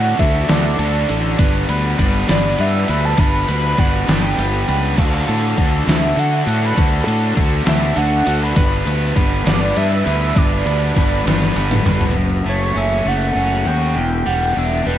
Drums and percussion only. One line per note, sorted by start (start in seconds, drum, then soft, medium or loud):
0.19 kick medium
0.19 ride medium
0.49 snare loud
0.49 ride loud
0.79 ride medium
1.09 ride medium
1.39 kick loud
1.39 ride loud
1.69 ride medium
1.99 kick medium
1.99 ride medium
2.29 snare loud
2.29 ride loud
2.58 ride medium
2.88 ride medium
3.18 kick loud
3.18 ride loud
3.48 ride medium
3.78 kick medium
3.78 ride medium
4.09 snare loud
4.09 ride loud
4.38 ride medium
4.68 ride medium
4.98 kick loud
4.98 crash medium
5.29 ride medium
5.58 kick medium
5.58 ride medium
5.89 snare loud
5.89 ride medium
6.19 ride medium
6.48 ride medium
6.78 kick loud
6.78 ride loud
7.08 ride medium
7.37 kick medium
7.37 ride medium
7.66 snare loud
7.66 ride loud
7.97 ride medium
8.27 ride medium
8.56 kick loud
8.56 ride loud
8.87 ride medium
9.16 kick medium
9.16 ride medium
9.46 snare loud
9.46 ride loud
9.76 ride medium
10.07 ride medium
10.36 kick loud
10.36 ride loud
10.66 ride medium
10.96 kick medium
10.96 ride medium
11.27 snare medium
11.27 ride medium
11.42 snare medium
11.56 ride medium
11.71 mid tom medium
11.86 mid tom loud
11.86 ride medium
12.01 floor tom medium